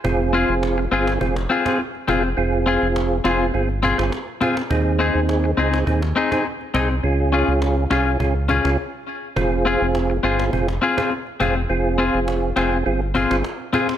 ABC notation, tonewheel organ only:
X:1
M:4/4
L:1/16
Q:1/4=103
K:Fm
V:1 name="Tonewheel organ"
[CFA]6 [CFA]2 [CFA] z2 [CFA] z2 [CFA] z | [CFA]6 [CFA]2 [CFA] z2 [CFA] z2 [CFA] z | [CEA]6 [CEA]2 [CEA] z2 [CEA] z2 [CEA] z | [DFA]6 [DFA]2 [DFA] z2 [DFA] z4 |
[CFA]6 [CFA]2 [CFA] z2 [CFA] z2 [CFA] z | [CFA]6 [CFA]2 [CFA] z2 [CFA] z2 [CFA] z |]